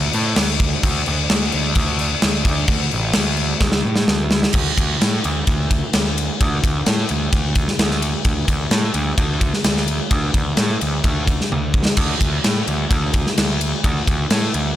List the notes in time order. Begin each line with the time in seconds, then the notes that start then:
0.13 A2, crash
0.36 D2, snare, crash
0.60 kick, crash
0.83 D2, kick, crash
1.06 D2, crash
1.30 D2, snare, crash
1.52 D2, crash
1.75 D2, kick, crash
1.99 crash
2.22 D2, snare, crash
2.45 D2, kick, crash
2.68 D2, kick, crash
2.91 A1, crash
3.13 D2, snare, crash
3.37 crash
3.61 D2, kick, snare
3.72 snare
3.85 A2
3.96 snare
4.08 D2, snare
4.31 snare
4.43 snare
4.53 D2, kick, crash
4.78 D2, kick, ride
5.01 A2, snare, ride
5.24 D2, ride
5.47 D2, kick, ride
5.71 kick, ride
5.93 D2, snare, ride
6.18 ride
6.41 D2, kick, ride
6.64 D2, kick, ride
6.86 A2, snare, ride
7.09 D2, ride
7.33 D2, kick, ride
7.55 kick, ride
7.68 snare
7.79 D2, snare, ride
7.91 snare
8.02 ride
8.25 D2, kick, ride
8.48 D2, kick, ride
8.71 A2, snare, ride
8.94 D2, ride
9.18 D2, kick, ride
9.41 kick, ride
9.54 snare
9.64 D2, snare, ride
9.77 snare
9.88 ride
10.11 D2, kick, ride
10.34 D2, kick, ride
10.57 A2, snare, ride
10.81 D2, ride
11.04 D2, kick, ride
11.27 kick, ride
11.41 snare
11.52 D2, high tom
11.74 kick
11.85 snare
11.97 D2, kick, crash, ride
12.21 D2, kick, ride
12.44 A2, snare, ride
12.68 D2, ride
12.91 D2, kick, ride
13.14 kick, ride
13.27 snare
13.38 D2, snare, ride
13.61 ride
13.84 D2, kick, ride
14.07 D2, kick, ride
14.30 A2, snare, ride
14.54 D2, ride